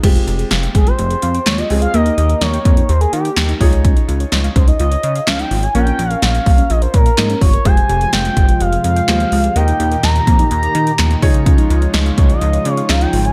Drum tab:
CC |x---------------|----------------|----------------|----------------|
HH |xxxxxxxxxxxxxxox|xxxxxxxxxxxxxxox|xxxxxxxxxxxxxxox|xxxxxxoxxxxxxxox|
CP |------------x---|------------x---|------------x---|------------x---|
SD |----o-------o---|----o-------o---|----o-------o---|----o-------o---|
BD |o-----o---------|------o-------o-|o-----o---------|------o---o---o-|

CC |----------------|----------------|----------------|
HH |xxxxxxxxxxxxxxox|xxxxxxxxxxxxxxox|xxxxxxxxxxxxxxox|
CP |------------x---|------------x---|------------x---|
SD |----o-------o---|----o-------o---|----o-------o---|
BD |o-----o---------|------o-------o-|o-----o---------|